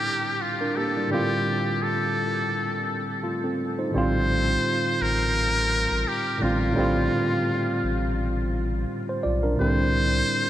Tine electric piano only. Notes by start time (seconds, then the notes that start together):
Already playing: A2 D3 G3 C4 E4
0.61 D4 A#4
0.77 A#3 G4
0.96 G3 E4
1.07 G#2 D3 G3
1.13 A2 C4 F4
3.24 A3 F4
3.44 C4 A4
3.79 D#4 C5
3.91 A2 D3 G3
3.96 C4 F4
6.38 A2 D3 G3
6.43 C4 F4
6.73 A2 D3 G3
6.78 C4 F4
9.09 C5
9.23 F4 D5
9.43 D4 A#4
9.56 A2 D3 G3
9.61 C4 E4